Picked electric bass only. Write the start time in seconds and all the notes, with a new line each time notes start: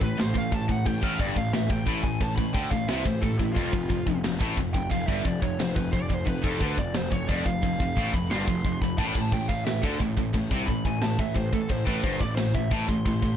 0.01 A1
0.19 A1
0.35 A1
0.52 A1
0.69 A1
0.86 A1
1.03 A1
1.19 G1
1.36 A1
1.53 A1
1.70 A1
1.86 A1
2.04 A1
2.21 A1
2.38 A1
2.55 D2
2.71 A1
2.89 C2
3.06 A1
3.23 A1
3.39 A1
3.57 F1
3.73 F1
3.90 F1
4.06 F1
4.24 F1
4.40 A1
4.57 F1
4.75 F1
4.91 F1
5.08 G1
5.25 F1
5.42 F1
5.59 F1
5.77 F1
5.93 F1
6.10 F1
6.27 F1
6.43 F1
6.61 D2
6.77 F1
6.96 F1
7.12 F1
7.29 F1
7.45 F1
7.63 F1
7.80 F1
7.97 A1
8.13 F1
8.31 G1
8.47 F1
8.64 F1
8.82 F1
8.98 A1
9.15 A1
9.32 A1
9.49 A1
9.66 A1
9.83 D2
10.00 A1
10.17 A1
10.34 A1
10.51 C2
10.68 A1
10.85 A1
11.02 A1
11.19 A1
11.36 A1
11.53 A1
11.70 A1
11.87 A1
12.04 G1
12.21 A1
12.36 A1
12.54 A1
12.71 A1
12.89 A1
13.06 A1
13.23 A1